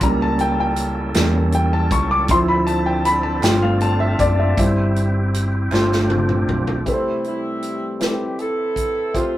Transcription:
0.01 C#2 G3 A#3 C#4 E4 A4 A#5, kick, closed hi-hat
0.22 A5
0.39 G5, closed hi-hat
0.60 G5
0.76 closed hi-hat
1.14 E2 G3 A#3 C#4, snare, clap, closed hi-hat
1.52 G5, closed hi-hat
1.73 A5
1.91 C#2 C#6, kick, closed hi-hat
2.11 D6
2.28 D2 F3 C4 D4 E4 C6, kick, closed hi-hat
2.48 B5
2.67 A5, closed hi-hat
2.86 G5
3.05 B5, closed hi-hat
3.23 A5
3.41 G1 G3 A3 C4 D4 F4 G5, snare, clap, closed hi-hat
3.62 F5
3.81 A5, closed hi-hat
4.00 E5
4.19 F#1 D5, kick, closed hi-hat
4.39 E5
4.57 G1 G3 C4 E4 G4, kick, closed hi-hat
4.96 closed hi-hat
5.34 closed hi-hat
5.71 G1 F3 A3 C4 D4 F4, snare, clap
5.92 snare
6.10 high tom
6.29 mid tom
6.48 B1, mid tom
6.67 floor tom
6.86 C3 G3 A3 C4 E4 G4 A4 B4, kick, closed hi-hat
6.94 C5
7.24 G3 A3 E4, closed hi-hat
7.63 closed hi-hat
8.00 C4 E4 G4 A4 B4, snare, closed hi-hat
8.39 E4 A4, closed hi-hat
8.76 kick, closed hi-hat
9.14 A3 C4 F4 G4 A4 C5 E5, kick, closed hi-hat

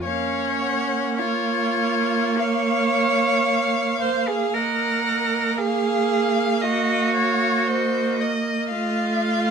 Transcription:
0.04 A#3 C#4 C#5 F5
0.62 F#5
1.18 F4 C#5 F5
2.38 C#5 F5
3.50 F5
4.02 C5
4.28 G#4
4.53 A#3 A#4 D#5 F#5
5.06 D#5
5.58 G#4 F5
6.62 F#4 D#5
7.15 C#5
7.67 C5 D#5
8.21 D#5
8.71 A3 F4 F5

